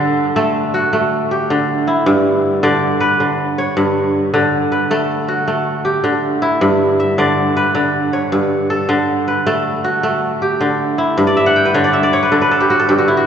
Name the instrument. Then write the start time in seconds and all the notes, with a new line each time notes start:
kora
Already playing: D3 A4
0.36 A3 A4
0.74 F#4
0.93 A3
1.31 G4
1.50 D3
1.87 E4
2.06 G2
2.63 D3 D5
3.00 B4
3.20 D3
3.58 C#5
3.77 G2
4.34 D3
4.72 B4
4.91 A3 A4
5.28 F#4
5.48 A3
5.85 G4
6.04 D3
6.42 E4
6.61 G2
7.00 E5
7.18 D3 D5
7.57 B4
7.75 D3
8.13 C#5
8.32 G2
8.70 A4
8.89 D3
9.28 B4
9.47 A3 A4
9.84 F#4
10.03 A3
10.42 G4
10.61 D3
10.98 E4
11.18 G2
11.27 D5
11.37 E5
11.46 F#5
11.56 G5
11.65 B4
11.74 D3 C#5
11.84 D5
11.93 E5
12.03 D5
12.13 C#5
12.23 B4
12.32 D3 A4
12.42 B4
12.51 A4
12.61 G4
12.70 F#4
12.80 A4
12.89 G2 G4
12.98 F#4
13.08 E4
13.17 F#4